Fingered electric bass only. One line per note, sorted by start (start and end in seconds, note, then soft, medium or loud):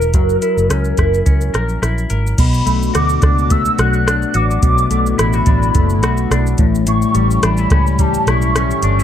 0.00 0.14 E1 medium
0.14 0.36 F#1 medium
0.57 0.67 F#1 medium
0.70 0.92 C#2 medium
0.98 1.21 F#1 medium
1.27 1.49 C#2 medium
1.54 1.77 A#1 medium
1.82 2.05 A#1 medium
2.11 2.33 G#1 medium
2.38 2.61 B1 loud
2.67 2.89 B1 loud
2.95 3.17 D2 medium
3.23 3.67 C#2 medium
3.79 4.23 B1 medium
4.35 4.57 A1 medium
4.63 4.85 B1 loud
4.91 5.13 B1 loud
5.19 5.41 A1 medium
5.47 5.69 A1 medium
5.75 6.03 F#1 loud
6.03 6.25 B1 medium
6.31 6.53 B1 loud
6.59 7.04 A1 loud
7.15 7.37 A1 loud
7.43 7.66 A1 medium
7.71 8.16 C#2 medium
8.27 8.72 B1 medium
8.83 9.04 G1 medium